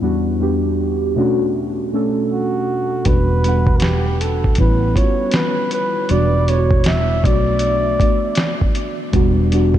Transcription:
0.01 synth keys E2 G3 B3 D4 F#4
0.40 synth keys E2 G3 B3 D4 G4
1.15 synth keys B2 A3 C#4 D4 F#4
1.92 synth keys B2 A3 C#4 D4 A4
2.32 flugelhorn F#4
3.05 fingered electric bass E1, synth keys G3 B3 D4 F#4, flugelhorn B4, kick, closed hi-hat
3.44 synth keys G3 B3 D4 F#5, closed hi-hat
3.67 kick
3.77 flugelhorn F#4, closed hi-hat
3.82 flugelhorn G4, snare
4.21 flugelhorn A4, closed hi-hat
4.44 kick
4.55 fingered electric bass A1, synth keys G3 B3, kick, closed hi-hat
4.59 synth keys C#4 E4, flugelhorn B4
4.94 synth keys G3 B3 C#4 F4, flugelhorn C#5, kick, closed hi-hat
5.03 synth keys F#4
5.31 flugelhorn B4, snare, closed hi-hat
5.71 flugelhorn B4, closed hi-hat
6.09 fingered electric bass E1, synth keys G3 B3 D4 F#4, flugelhorn D5, closed hi-hat
6.48 synth keys G3 B3 D4 E4, flugelhorn C#5, closed hi-hat
6.58 synth keys F#4
6.71 kick
6.84 flugelhorn E5, snare, closed hi-hat
7.23 fingered electric bass B1, synth keys A3 B3 D4 F#4, flugelhorn D5, kick, closed hi-hat
7.59 closed hi-hat
7.99 synth keys A3 B3 D4 F#4, kick, closed hi-hat
8.35 snare, closed hi-hat
8.61 kick
8.75 closed hi-hat
9.12 fingered electric bass E1, synth keys G3 B3 D4 F#4, kick, closed hi-hat
9.51 synth keys G3 B3 D4 F#4, closed hi-hat
9.74 kick

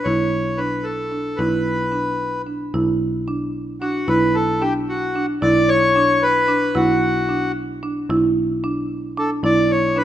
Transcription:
0.04 picked electric bass B1, marimba E4, accordion C#5
0.57 marimba D4, accordion B4
0.83 accordion A4
1.12 marimba D4
1.37 picked electric bass B1, marimba E4, accordion B4
1.92 marimba D4
2.47 marimba D4
2.74 picked electric bass B1, marimba E4
3.28 marimba D4
3.81 marimba D4, accordion F#4
4.08 picked electric bass B1, marimba E4, accordion B4
4.35 accordion A4
4.61 marimba D4, accordion G4
4.89 accordion F#4
5.15 marimba D4
5.42 picked electric bass B1, marimba E4, accordion D5
5.69 accordion C#5
5.96 marimba D4
6.22 accordion B4
6.48 marimba D4
6.75 picked electric bass B1, marimba E4, accordion F#4
7.29 marimba D4
7.83 marimba D4
8.09 picked electric bass B1, marimba E4
8.64 marimba D4
9.18 marimba D4, accordion A4
9.43 picked electric bass B1, marimba E4, accordion D5
9.71 accordion C#5
9.96 marimba D4, accordion B4

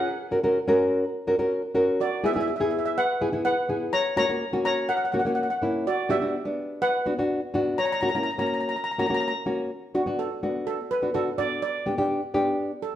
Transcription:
Already playing: steel pan A#4 F#5
0.31 nylon-string guitar C#4 F#4 A#4
0.43 nylon-string guitar C#4 F#4 A#4
0.68 nylon-string guitar C#4 F#4 A#4
1.27 nylon-string guitar C#4 F#4 A#4
1.39 nylon-string guitar C#4 F#4 A#4
1.75 nylon-string guitar C#4 F#4 A#4
2.00 steel pan F#4 D5
2.24 nylon-string guitar B3 E4 G#4, steel pan G#4 E5
2.33 nylon-string guitar B3 E4 G#4, steel pan E5
2.41 steel pan E5
2.48 steel pan E5
2.56 nylon-string guitar B3, steel pan E5
2.60 nylon-string guitar E4 G#4, steel pan E5
2.70 steel pan E5
2.79 steel pan E5
2.86 steel pan E5
2.98 steel pan B4 F#5
3.21 nylon-string guitar B3 E4 G#4
3.32 nylon-string guitar B3 E4 G#4
3.45 steel pan B4 F#5
3.69 nylon-string guitar B3 E4 G#4
3.93 steel pan C#5 A#5
4.16 nylon-string guitar A#3 C#4 F#4, steel pan C#5 A#5
4.29 nylon-string guitar A#3 C#4 F#4
4.53 nylon-string guitar A#3 C#4 F#4
4.65 steel pan C#5 A#5
4.89 steel pan A#4 F#5
4.97 steel pan F#5
5.05 steel pan F#5
5.12 nylon-string guitar A#3 C#4 F#4, steel pan F#5
5.19 steel pan F#5
5.25 nylon-string guitar A#3 C#4 F#4, steel pan F#5
5.35 steel pan F#5
5.43 steel pan F#5
5.50 steel pan F#5
5.62 nylon-string guitar A#3 C#4 E4
5.87 steel pan F#4 D5
6.09 nylon-string guitar B3 D4 F#4, steel pan G4 E5
6.21 nylon-string guitar B3 D4 F#4
6.45 nylon-string guitar B3 D4
6.82 steel pan B4 F#5
7.06 nylon-string guitar B3 D4 F#4
7.18 nylon-string guitar B3 D4 F#4
7.54 nylon-string guitar B3 D4 F#4
7.78 steel pan C#5 A#5
7.86 steel pan A#5
7.92 steel pan A#5
8.01 nylon-string guitar A#3 C#4 F#4, steel pan A#5
8.09 steel pan A#5
8.14 nylon-string guitar A#3 C#4 E4, steel pan A#5
8.23 steel pan A#5
8.31 steel pan A#5
8.38 nylon-string guitar A#3 C#4 F#4, steel pan A#5
8.47 steel pan A#5
8.54 steel pan A#5
8.60 steel pan A#5
8.69 steel pan A#5
8.76 steel pan A#5
8.84 steel pan A#5
8.91 steel pan A#5
8.98 nylon-string guitar A#3 C#4 F#4, steel pan A#5
9.06 nylon-string guitar A#3 C#4 F#4, steel pan A#5
9.14 steel pan A#5
9.21 steel pan A#5
9.28 steel pan A#5
9.46 nylon-string guitar A#3 C#4 F#4
9.94 nylon-string guitar B3 D4 F#4, steel pan F#4
10.06 nylon-string guitar B3 D4 F#4
10.19 steel pan A4
10.43 nylon-string guitar B3 D4 F#4
10.67 steel pan A4
10.91 steel pan B4
11.02 nylon-string guitar B3 D4 F#4
11.14 nylon-string guitar B3 D4 F#4, steel pan A4
11.38 nylon-string guitar B3 D4 F#4, steel pan D5
11.62 steel pan D5
11.86 nylon-string guitar B3 D4 G4
11.98 nylon-string guitar B3 D4 G4
12.34 nylon-string guitar B3 D4 G4
12.82 steel pan A4

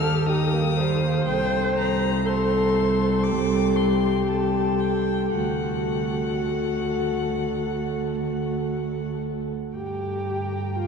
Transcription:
Already playing: cello D#2, viola A4, violin F6
0.03 violin G4
0.26 violin D#4 D#6, viola G4
0.54 violin A#3
0.79 violin G3, viola C5
1.04 violin A#3
1.25 cello C2, violin G5
1.30 violin A4
1.78 violin A#5
2.26 viola A4, violin A4 C6
3.24 viola G4, violin D6
3.76 violin C6
4.28 violin A4 A5
4.80 violin G5
5.32 cello D2, viola F#4, violin F#5
5.37 violin A4
9.74 cello G2, viola G4, violin G5 A#5
10.79 viola F4

